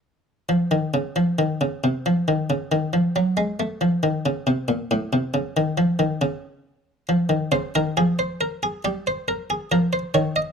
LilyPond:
\new Staff \with { instrumentName = "Harpsichord" } { \clef bass \time 4/4 \key f \phrygian \tempo 4 = 68 << { r8 f16 ees16 des16 f16 ees16 des16 c16 f16 ees16 des16 ees16 f16 ges16 aes16 | a16 f16 ees16 des16 c16 bes,16 a,16 c16 des16 ees16 f16 ees16 des4 | r8 c''16 bes'16 aes'16 c''16 bes'16 aes'16 g'16 c''16 bes'16 aes'16 bes'16 c''16 des''16 ees''16 | } \\ { r1 | r1 | f16 ees16 des16 ees16 f4 g4 f8 ees8 | } >> }